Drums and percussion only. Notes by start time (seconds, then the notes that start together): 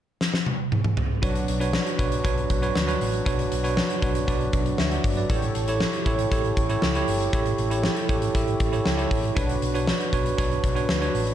0.21 snare
0.34 snare
0.46 high tom
0.72 mid tom
0.84 mid tom
0.97 floor tom
1.23 kick, closed hi-hat
1.35 closed hi-hat
1.48 closed hi-hat
1.61 closed hi-hat
1.73 snare
1.86 closed hi-hat
1.99 kick, closed hi-hat
2.12 closed hi-hat
2.25 kick, closed hi-hat
2.38 closed hi-hat
2.50 kick, closed hi-hat
2.63 closed hi-hat
2.75 snare
2.88 closed hi-hat
3.01 open hi-hat
3.14 closed hi-hat
3.26 kick, closed hi-hat
3.39 closed hi-hat
3.52 closed hi-hat
3.65 closed hi-hat
3.77 snare
3.90 closed hi-hat
4.02 kick, closed hi-hat
4.15 closed hi-hat
4.28 kick, closed hi-hat
4.41 closed hi-hat
4.53 kick, closed hi-hat
4.66 closed hi-hat
4.78 snare
4.91 closed hi-hat
5.04 kick, open hi-hat
5.17 closed hi-hat
5.30 kick, closed hi-hat
5.42 closed hi-hat
5.55 closed hi-hat
5.68 closed hi-hat
5.80 snare
5.93 closed hi-hat
6.06 kick, closed hi-hat
6.19 closed hi-hat
6.32 kick, closed hi-hat
6.45 closed hi-hat
6.57 kick, closed hi-hat
6.70 closed hi-hat
6.82 snare
6.95 closed hi-hat
7.08 open hi-hat
7.20 closed hi-hat
7.33 kick, closed hi-hat
7.46 closed hi-hat
7.58 closed hi-hat
7.71 closed hi-hat
7.84 snare
7.96 closed hi-hat
8.09 kick, closed hi-hat
8.22 closed hi-hat
8.35 kick, closed hi-hat
8.48 closed hi-hat
8.60 kick, closed hi-hat
8.73 closed hi-hat
8.86 snare
8.99 closed hi-hat
9.11 kick, open hi-hat
9.24 closed hi-hat
9.37 kick, closed hi-hat
9.49 closed hi-hat
9.62 closed hi-hat
9.75 closed hi-hat
9.87 snare
10.00 closed hi-hat
10.13 kick, closed hi-hat
10.26 closed hi-hat
10.38 kick, closed hi-hat
10.51 closed hi-hat
10.64 kick, closed hi-hat
10.76 closed hi-hat
10.89 snare
11.02 closed hi-hat
11.15 open hi-hat
11.27 closed hi-hat